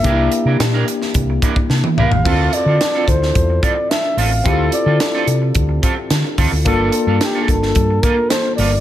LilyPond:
<<
  \new Staff \with { instrumentName = "Flugelhorn" } { \time 4/4 \key d \minor \tempo 4 = 109 e''4 r2 r8 f''8~ | f''8 d''4 c''4 d''8 e''8 f''8~ | f''8 d''4. r2 | r4 g'16. gis'32 a'4 bes'8 c''8 d''8 | }
  \new Staff \with { instrumentName = "Clean electric guitar" } { \time 4/4 \key d \minor <d' e' bes'>8 r16 <d' e' bes'>16 r16 <d' e' bes'>16 r4 <d' e' bes'>16 r8. <d' e' bes'>16 r16 | <c' f' a'>8 r16 <c' f' a'>16 r16 <c' f' a'>16 r4 <c' f' a'>16 r8. <c' f' a'>16 r16 | <c' f' a'>8 r16 <c' f' a'>16 r16 <c' f' a'>16 r4 <c' f' a'>16 r8. <c' f' a'>16 r16 | <bes f' a'>8 r16 <bes f' a'>16 r16 <bes f' a'>16 r4 <bes f' a'>16 r8. <bes f' a'>16 r16 | }
  \new Staff \with { instrumentName = "Tine electric piano" } { \time 4/4 \key d \minor <bes d' ees' e' g'>1 | <c' e' f' a'>1 | <c' e' f' g' a'>1 | <bes d' f' a'>1 | }
  \new Staff \with { instrumentName = "Fingered electric bass" } { \clef bass \time 4/4 \key d \minor c,8 r16 c16 bes,8 r8 c,8 r8 c16 r16 c,16 a,,16 | d,8 r16 d16 r8 d,8 e,8 r4 a,,8 | d,8 r16 d16 r8 c8 d,8 r8 d16 r16 d,16 d,16 | g,,8 r16 g,16 r8 g,,8 g,8 r4 g,,8 | }
  \new DrumStaff \with { instrumentName = "Drums" } \drummode { \time 4/4 <hh bd>8 hh8 <hh sn>8 hh16 sn16 <hh bd>8 <hh bd>16 bd16 sn16 tommh16 toml16 tomfh16 | <cymc bd>8 hh8 <hh sn>8 <hh bd>16 sn16 <hh bd>8 <hh bd>8 <hh sn>8 hho8 | <hh bd>8 hh8 <hh sn>8 hh8 <hh bd>8 <hh bd>8 <hh sn>8 <hho bd>8 | <hh bd>8 hh8 <hh sn>8 <hh bd>16 sn16 <hh bd>8 <hh bd>8 <hh sn>8 hho8 | }
>>